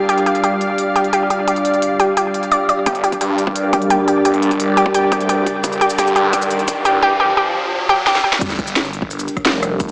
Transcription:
Already playing: analog synth pad G3 D4 G4, ambient pad G4 D5 F5
0.09 synth arpeggio sound G4, analog synth pad D5, closed hi-hat
0.18 closed hi-hat
0.26 synth arpeggio sound G4, closed hi-hat
0.35 closed hi-hat
0.44 synth arpeggio sound G4, closed hi-hat
0.61 closed hi-hat
0.78 closed hi-hat
0.96 synth arpeggio sound G4, closed hi-hat
1.04 closed hi-hat
1.13 synth arpeggio sound G4, closed hi-hat
1.30 synth arpeggio sound G4, closed hi-hat
1.48 synth arpeggio sound G4, closed hi-hat
1.56 closed hi-hat
1.65 closed hi-hat
1.74 closed hi-hat
1.82 closed hi-hat
2.00 synth arpeggio sound G4, closed hi-hat
2.17 synth arpeggio sound G4, closed hi-hat
2.34 closed hi-hat
2.43 closed hi-hat
2.52 synth arpeggio sound D5, closed hi-hat
2.69 synth arpeggio sound D5, closed hi-hat
2.86 detuned saw bass G1, analog synth pad G3 D4 G4 A#4, ambient pad G4 D5, synth arpeggio sound G4, kick, closed hi-hat, riser
2.95 closed hi-hat
3.04 synth arpeggio sound G4, closed hi-hat
3.12 kick, closed hi-hat
3.21 detuned saw bass G2, synth arpeggio sound G4, ambient pad G5, closed hi-hat
3.38 closed hi-hat
3.47 kick
3.56 closed hi-hat
3.73 synth arpeggio sound G4, kick, closed hi-hat
3.82 closed hi-hat
3.90 synth arpeggio sound G4, closed hi-hat
4.08 synth arpeggio sound G4, closed hi-hat
4.25 detuned saw bass G1, synth arpeggio sound G4, closed hi-hat
4.34 closed hi-hat
4.42 closed hi-hat
4.51 kick, closed hi-hat
4.60 closed hi-hat
4.77 synth arpeggio sound G4, closed hi-hat
4.86 kick
4.94 synth arpeggio sound G4, closed hi-hat
5.12 detuned saw bass D2, synth arpeggio sound G4, kick, closed hi-hat
5.20 closed hi-hat
5.29 synth arpeggio sound G4, closed hi-hat
5.46 kick, closed hi-hat
5.64 detuned saw bass G1, kick, closed hi-hat, cabasa
5.72 closed hi-hat, cabasa
5.81 synth arpeggio sound G4, closed hi-hat
5.90 closed hi-hat, cabasa
5.98 detuned saw bass G2, synth arpeggio sound G4, kick, closed hi-hat, cabasa
6.07 cabasa
6.16 synth arpeggio sound G4, closed hi-hat
6.33 synth arpeggio sound G4, kick, closed hi-hat, cabasa
6.42 cabasa
6.51 closed hi-hat, cabasa
6.59 closed hi-hat
6.68 kick, closed hi-hat, cabasa
6.85 detuned saw bass G1, synth arpeggio sound G4, closed hi-hat, cabasa
7.03 synth arpeggio sound G4
7.20 synth arpeggio sound G4
7.37 synth arpeggio sound G4
7.89 synth arpeggio sound G4
8.07 synth arpeggio sound G4, snare
8.15 snare
8.24 synth arpeggio sound G4
8.33 snare
8.41 detuned saw bass G1, analog synth pad G3 D4 G4 A#4, kick, closed hi-hat, crash, sub drop, cabasa
8.50 snare, closed hi-hat, cabasa
8.59 ambient pad G5, kick, closed hi-hat
8.67 closed hi-hat, cabasa
8.76 snare, closed hi-hat, cabasa
8.85 cross-stick, cabasa
8.93 detuned saw bass G1, closed hi-hat
9.02 kick
9.11 closed hi-hat, cabasa
9.19 closed hi-hat, cabasa
9.28 closed hi-hat, cabasa
9.37 kick, cross-stick, closed hi-hat
9.45 detuned saw bass F1, snare, closed hi-hat, cabasa
9.63 cross-stick, closed hi-hat, cabasa
9.80 kick, closed hi-hat, cabasa

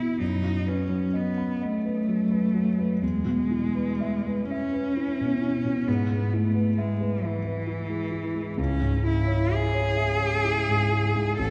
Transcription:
Already playing: grand piano E2 B2 E4 G#4 B4 E5, cello E4
0.20 grand piano F#2, cello D#4
0.43 grand piano F#3
0.67 cello C#4, grand piano B4
0.89 grand piano F#3
1.13 cello B3, grand piano D#5
1.38 grand piano B5
1.62 cello A3, grand piano D#5
1.85 grand piano B4
2.08 grand piano F#3
2.31 grand piano B4
2.54 grand piano F#3
2.79 grand piano B4
3.02 grand piano E2, cello G#3
3.25 grand piano B2
3.50 grand piano E4
3.75 grand piano B4
4.00 grand piano E5
4.27 grand piano B4
4.50 cello C#4, grand piano E5
4.73 grand piano B4
4.96 grand piano E4
5.21 grand piano B2
5.41 grand piano E4
5.65 grand piano B2
5.87 grand piano G#2, cello B3
6.10 grand piano G#3
6.33 cello A3, grand piano E4
6.54 grand piano B4
6.78 cello G#3, grand piano E5
7.01 grand piano B4
7.22 cello E3, grand piano E5
7.45 grand piano B4
7.67 grand piano E4
7.90 grand piano G#3
8.11 grand piano E4
8.34 grand piano G#3
8.57 grand piano C#2, cello C#4
8.81 grand piano G#2
9.04 grand piano E4, cello E4
9.27 grand piano C#5
9.50 cello G#4, grand piano E5
9.74 grand piano C#5
9.97 grand piano E5
10.21 grand piano C#5
10.44 grand piano E4
10.69 grand piano G#2
10.92 grand piano E4
11.16 grand piano G#2
11.39 grand piano A1, cello A4

